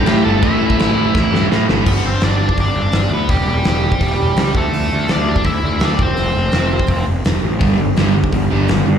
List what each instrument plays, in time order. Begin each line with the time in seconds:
Already playing: overdriven electric guitar G4 G5
0.04 distorted electric guitar A2 E3 A3, picked electric bass A2, snare, crash
0.24 picked electric bass G1, distorted electric guitar A2 E3 A3, overdriven electric guitar A4 A5
0.41 picked electric bass A1, distorted electric guitar A2 E3 A3, overdriven electric guitar E4 E5, kick, crash
0.59 distorted electric guitar A2 E3 A3, picked electric bass A2
0.70 kick
0.77 picked electric bass A1, distorted electric guitar A2 E3 A3, snare, crash
0.95 distorted electric guitar A2 E3 A3
1.14 picked electric bass A1, distorted electric guitar A2 E3 A3, kick, snare
1.32 picked electric bass G2, distorted electric guitar A2 E3 A3, snare
1.50 distorted electric guitar A2 E3 A3, picked electric bass A2, snare
1.68 picked electric bass G1, distorted electric guitar A2 E3 A3, snare
1.86 picked electric bass G1, overdriven electric guitar B3 B4, kick, crash
2.05 picked electric bass G1, overdriven electric guitar C4 C5
2.21 picked electric bass G1, overdriven electric guitar D4 D5, snare, open hi-hat
2.49 kick
2.57 picked electric bass G1, overdriven electric guitar D4 D5, kick, open hi-hat
2.75 picked electric bass G1
2.92 picked electric bass G1, snare, open hi-hat
3.10 picked electric bass D2, overdriven electric guitar B4
3.14 overdriven electric guitar B3
3.29 picked electric bass E1, overdriven electric guitar G3 G4, kick, open hi-hat
3.46 picked electric bass E1, overdriven electric guitar G3 G4
3.64 picked electric bass E1, snare, open hi-hat
3.92 kick
4.01 picked electric bass E1, kick, open hi-hat
4.18 picked electric bass E1
4.36 picked electric bass C#2, snare, open hi-hat
4.55 picked electric bass D2, overdriven electric guitar A3 A4, kick
4.72 picked electric bass D2, open hi-hat
4.92 picked electric bass D2
5.08 picked electric bass D2, overdriven electric guitar D4 D5, snare, open hi-hat
5.29 overdriven electric guitar D4 D5
5.36 kick
5.44 picked electric bass D2, overdriven electric guitar E4 E5, kick, open hi-hat
5.64 picked electric bass D2
5.80 picked electric bass D2, snare, open hi-hat
5.85 overdriven electric guitar D4 D5
5.99 picked electric bass F1, overdriven electric guitar C4, kick
6.03 overdriven electric guitar C5
6.17 picked electric bass F1, open hi-hat
6.35 picked electric bass F1
6.52 picked electric bass F1, snare, open hi-hat
6.79 kick
6.87 picked electric bass F1, kick, open hi-hat
7.08 picked electric bass F1
7.25 picked electric bass F1, snare, open hi-hat
7.43 picked electric bass A1
7.59 picked electric bass G1, distorted electric guitar G2 D3 G3, kick, open hi-hat
7.77 picked electric bass G1, distorted electric guitar G2 D3
7.96 picked electric bass G1, distorted electric guitar G2 D3 G3, snare, open hi-hat
8.15 distorted electric guitar G2 D3
8.24 kick
8.32 picked electric bass G1, distorted electric guitar G2 D3, kick, open hi-hat
8.51 picked electric bass G1, distorted electric guitar G2 D3 G3
8.68 picked electric bass G1, distorted electric guitar G2 D3, snare, open hi-hat
8.85 distorted electric guitar G2 D3, picked electric bass G2